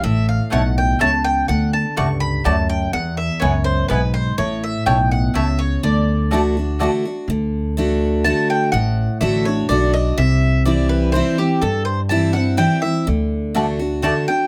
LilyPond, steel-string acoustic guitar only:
\new Staff \with { instrumentName = "Steel-string acoustic guitar" } { \time 3/4 \key d \major \tempo 4 = 124 << { r2. | r2. | r2. | r2. |
r4 <d a d' fis'>8 <d' fis'>8 <d a d' fis'>8 <d' fis'>8 | r4 <d a d' fis'>4 <d a d' fis'>4 | r4 <d a d' fis'>8 <d' fis'>8 <d a d' fis'>8 <d' fis'>8 | r4 <e g c' e'>4 <e g c' e'>8 <c' e'>8 |
r4 <e g c' e'>8 <c' e'>8 <e g c' e'>8 <c' e'>8 | r4 <d a d' fis'>8 <d' fis'>8 <d a d' fis'>8 <d' fis'>8 | } \\ { a,4 b,4 cis4 | d4 g,4 fis,4 | e,4 fis,4 gis,4 | a,4 b,4 cis4 |
d2 r4 | d2 r4 | a,2 r4 | c2 r4 |
g,2 r4 | d2 r4 | } >> }